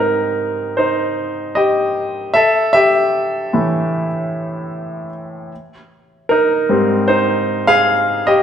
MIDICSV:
0, 0, Header, 1, 2, 480
1, 0, Start_track
1, 0, Tempo, 789474
1, 1428, Time_signature, 4, 2, 24, 8
1, 5124, End_track
2, 0, Start_track
2, 0, Title_t, "Grand piano"
2, 0, Program_c, 0, 0
2, 0, Control_c, 0, 64, 127
2, 0, Note_on_c, 0, 44, 46
2, 0, Note_on_c, 0, 55, 39
2, 0, Note_on_c, 0, 60, 52
2, 0, Note_on_c, 0, 63, 55
2, 0, Note_on_c, 0, 70, 68
2, 443, Note_off_c, 0, 63, 0
2, 468, Note_on_c, 0, 72, 70
2, 476, Note_on_c, 0, 63, 57
2, 480, Note_off_c, 0, 70, 0
2, 928, Note_off_c, 0, 63, 0
2, 944, Note_on_c, 0, 75, 78
2, 954, Note_on_c, 0, 67, 62
2, 962, Note_off_c, 0, 72, 0
2, 1401, Note_off_c, 0, 44, 0
2, 1401, Note_off_c, 0, 55, 0
2, 1403, Note_off_c, 0, 60, 0
2, 1407, Note_off_c, 0, 67, 0
2, 1420, Note_on_c, 0, 76, 93
2, 1431, Note_on_c, 0, 69, 70
2, 1437, Control_c, 0, 64, 0
2, 1440, Note_off_c, 0, 75, 0
2, 1552, Control_c, 0, 64, 127
2, 1650, Note_off_c, 0, 76, 0
2, 1653, Note_off_c, 0, 69, 0
2, 1659, Note_on_c, 0, 76, 96
2, 1669, Note_on_c, 0, 67, 67
2, 2148, Note_on_c, 0, 52, 43
2, 2149, Note_on_c, 0, 45, 49
2, 2153, Note_on_c, 0, 57, 51
2, 2467, Note_off_c, 0, 52, 0
2, 2468, Note_off_c, 0, 45, 0
2, 2470, Note_off_c, 0, 57, 0
2, 3079, Note_off_c, 0, 76, 0
2, 3084, Note_off_c, 0, 67, 0
2, 3356, Control_c, 0, 64, 0
2, 3474, Control_c, 0, 64, 127
2, 3826, Note_on_c, 0, 70, 82
2, 3838, Note_on_c, 0, 63, 62
2, 4070, Note_on_c, 0, 44, 53
2, 4073, Note_on_c, 0, 55, 48
2, 4075, Note_on_c, 0, 60, 54
2, 4283, Note_off_c, 0, 70, 0
2, 4289, Note_off_c, 0, 63, 0
2, 4303, Note_on_c, 0, 72, 80
2, 4311, Note_on_c, 0, 63, 65
2, 4645, Note_off_c, 0, 63, 0
2, 4666, Note_on_c, 0, 77, 101
2, 4671, Note_on_c, 0, 68, 71
2, 4676, Note_off_c, 0, 72, 0
2, 4765, Note_off_c, 0, 44, 0
2, 4766, Note_off_c, 0, 55, 0
2, 4767, Note_off_c, 0, 60, 0
2, 5005, Note_off_c, 0, 68, 0
2, 5027, Note_on_c, 0, 75, 88
2, 5033, Note_on_c, 0, 67, 66
2, 5038, Note_off_c, 0, 77, 0
2, 5124, Note_off_c, 0, 67, 0
2, 5124, Note_off_c, 0, 75, 0
2, 5124, End_track
0, 0, End_of_file